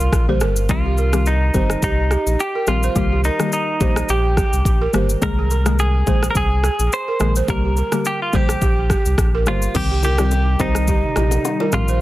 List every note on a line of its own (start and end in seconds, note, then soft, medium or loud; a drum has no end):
0.00 0.25 F4 medium
0.00 shaker medium
0.12 0.43 A#1 loud
0.12 kick loud
0.12 cross-stick loud
0.12 shaker medium
0.28 0.48 D3 medium
0.28 0.48 G3 medium
0.28 0.48 A#3 medium
0.28 0.48 G4 medium
0.28 0.37 C5 medium
0.40 0.71 G1 medium
0.40 0.52 A#4 medium
0.40 cross-stick medium
0.40 shaker medium
0.56 shaker medium
0.69 1.50 C2 loud
0.69 1.09 D#3 loud
0.69 1.09 G3 medium
0.69 1.10 C4 medium
0.69 1.28 F4 loud
0.69 1.10 G4 loud
0.69 kick loud
0.69 shaker medium
0.86 0.93 G4 medium
0.98 1.08 A#4 medium
0.98 shaker medium
1.13 1.51 D#3 medium
1.13 1.51 G3 medium
1.13 1.51 C4 medium
1.13 1.51 G4 medium
1.13 cross-stick loud
1.13 shaker medium
1.26 1.83 D#4 medium
1.26 shaker medium
1.54 1.76 G1 medium
1.54 1.80 D#3 medium
1.54 1.80 G3 medium
1.54 1.81 C4 medium
1.54 1.81 G4 medium
1.54 1.65 C5 medium
1.54 kick medium
1.54 shaker medium
1.70 cross-stick medium
1.70 shaker medium
1.82 2.16 C2 loud
1.82 2.41 D#4 medium
1.82 1.93 G4 medium
1.82 kick loud
1.82 shaker medium
2.11 2.21 G4 medium
2.11 cross-stick medium
2.11 shaker soft
2.26 2.36 A#1 medium
2.26 shaker medium
2.40 2.66 G4 loud
2.40 shaker medium
2.55 2.63 A#4 medium
2.67 2.89 A#1 medium
2.67 2.89 D#3 medium
2.67 2.89 G3 medium
2.67 2.89 C4 medium
2.67 3.20 F4 loud
2.67 2.89 G4 medium
2.67 cross-stick medium
2.67 shaker medium
2.83 2.92 C5 medium
2.83 shaker medium
2.95 3.30 C2 loud
2.95 3.36 D#3 medium
2.95 3.36 G3 medium
2.95 3.36 A#3 medium
2.95 3.36 G4 loud
2.95 kick loud
2.95 shaker medium
3.12 3.20 G4 medium
3.24 3.52 D#4 medium
3.24 3.35 A#4 medium
3.24 shaker medium
3.39 3.77 D#3 medium
3.39 3.77 G3 medium
3.39 3.78 A#3 medium
3.39 3.78 G4 medium
3.39 cross-stick medium
3.39 shaker medium
3.52 4.11 D#4 medium
3.52 shaker medium
3.80 4.03 A#1 medium
3.80 4.07 D#3 medium
3.80 4.07 G3 medium
3.80 4.07 A#3 medium
3.80 4.07 G4 medium
3.80 3.91 C5 medium
3.80 kick medium
3.80 shaker medium
3.96 cross-stick loud
3.96 shaker medium
4.09 4.43 A#1 medium
4.09 4.19 G4 medium
4.09 4.90 G4 medium
4.09 shaker medium
4.37 4.48 G4 medium
4.37 kick loud
4.37 cross-stick medium
4.37 shaker medium
4.53 4.63 C2 medium
4.53 shaker medium
4.65 4.87 A#1 medium
4.65 kick loud
4.65 shaker medium
4.81 4.90 A#4 medium
4.93 5.16 G1 loud
4.93 5.15 D#3 medium
4.93 5.15 G3 medium
4.93 5.15 A#3 medium
4.93 5.15 G4 medium
4.93 5.04 C5 medium
4.93 cross-stick medium
4.93 shaker medium
5.09 shaker medium
5.22 6.03 C2 loud
5.22 5.62 D#3 loud
5.22 5.62 G#3 medium
5.22 5.62 A#3 medium
5.22 5.62 G#4 loud
5.22 5.79 A#4 loud
5.22 kick loud
5.22 shaker medium
5.39 5.46 G#4 medium
5.51 5.61 A#4 medium
5.51 shaker medium
5.66 6.04 D#3 medium
5.66 6.04 G#3 medium
5.66 6.04 A#3 medium
5.66 6.04 G#4 medium
5.66 cross-stick loud
5.66 shaker medium
5.79 6.26 G#4 loud
5.79 shaker medium
6.07 6.29 A#1 medium
6.07 6.33 D#3 medium
6.07 6.33 G#3 medium
6.07 6.33 A#3 medium
6.07 6.33 G#4 medium
6.07 6.18 C5 medium
6.07 kick medium
6.07 shaker medium
6.23 cross-stick medium
6.23 shaker medium
6.31 6.36 A#4 medium
6.35 6.69 C2 medium
6.35 6.46 G#4 medium
6.35 6.93 G#4 medium
6.35 kick medium
6.35 shaker medium
6.64 6.74 G#4 medium
6.64 cross-stick medium
6.64 shaker soft
6.79 6.89 A#1 medium
6.79 shaker medium
6.92 7.34 C5 loud
6.92 shaker medium
7.08 7.16 A#4 medium
7.20 7.42 A#1 medium
7.20 7.41 D#3 medium
7.20 7.42 G#3 medium
7.20 7.42 A#3 medium
7.20 7.42 G#4 medium
7.20 cross-stick medium
7.20 shaker medium
7.36 7.45 C5 medium
7.36 shaker medium
7.48 7.82 C2 loud
7.48 7.88 D3 loud
7.48 7.89 G3 medium
7.48 7.89 A#3 medium
7.48 7.89 G4 loud
7.48 8.06 A#4 loud
7.48 kick loud
7.48 shaker medium
7.65 7.73 G4 medium
7.77 7.87 A#4 medium
7.77 shaker medium
7.92 8.30 D3 medium
7.92 8.30 G3 medium
7.92 8.30 A#3 medium
7.92 8.30 G4 medium
7.92 cross-stick loud
7.92 shaker medium
8.05 8.20 G4 medium
8.05 shaker medium
8.22 8.35 F4 medium
8.33 8.55 A#1 medium
8.33 8.59 D3 medium
8.33 8.60 G3 medium
8.33 8.60 A#3 medium
8.33 8.60 G4 medium
8.33 9.47 G4 medium
8.33 8.44 C5 medium
8.33 kick medium
8.33 shaker medium
8.49 cross-stick medium
8.49 shaker medium
8.62 8.96 A#1 medium
8.62 8.72 G4 medium
8.62 kick medium
8.62 shaker medium
8.90 9.00 G4 medium
8.90 kick medium
8.90 cross-stick medium
8.90 shaker soft
9.05 9.15 C2 loud
9.05 shaker medium
9.18 9.48 A#1 loud
9.18 kick loud
9.18 cross-stick loud
9.18 shaker medium
9.35 9.43 A#4 medium
9.46 9.68 G1 medium
9.46 9.68 D3 medium
9.46 9.68 G3 medium
9.46 9.68 A#3 medium
9.46 9.76 F4 medium
9.46 9.68 G4 medium
9.46 9.57 C5 medium
9.46 cross-stick medium
9.46 shaker medium
9.62 shaker medium
9.74 10.56 C2 loud
9.74 11.99 C3 medium
9.74 10.15 D#3 loud
9.74 11.99 D#3 medium
9.74 12.01 G3 medium
9.74 10.15 G3 medium
9.74 10.15 C4 medium
9.74 11.99 D#4 medium
9.74 10.15 G4 loud
9.74 10.03 G4 medium
9.74 kick loud
9.74 crash medium
9.74 low conga medium
9.74 shaker medium
9.91 9.99 G4 medium
10.03 10.62 G4 loud
10.03 10.14 A#4 medium
10.03 low bongo medium
10.03 low conga medium
10.03 shaker medium
10.18 10.57 D#3 medium
10.18 10.57 G3 medium
10.18 10.57 C4 medium
10.18 10.57 G4 medium
10.18 cross-stick loud
10.18 low bongo medium
10.18 shaker medium
10.31 high bongo medium
10.31 shaker medium
10.59 11.04 C2 medium
10.59 10.86 D#3 medium
10.59 10.86 G3 medium
10.59 10.86 C4 medium
10.59 11.77 D#4 medium
10.59 10.86 G4 medium
10.59 10.70 C5 medium
10.59 kick medium
10.59 high bongo medium
10.59 shaker medium
10.75 cross-stick medium
10.75 shaker medium
10.88 10.99 G4 medium
10.88 kick loud
10.88 low conga medium
10.88 shaker medium
11.16 11.38 A#1 medium
11.16 11.27 G4 medium
11.16 cross-stick medium
11.16 low bongo medium
11.16 shaker medium
11.31 high bongo medium
11.31 shaker medium
11.45 high bongo medium
11.45 shaker medium
11.60 11.69 A#4 medium
11.60 low bongo medium
11.72 12.01 A#1 loud
11.72 11.94 D#3 medium
11.72 11.94 G3 medium
11.72 11.94 C4 medium
11.72 12.00 F4 medium
11.72 11.94 G4 medium
11.72 cross-stick medium
11.72 mid tom medium
11.72 shaker medium
11.88 11.97 C5 medium
11.88 shaker medium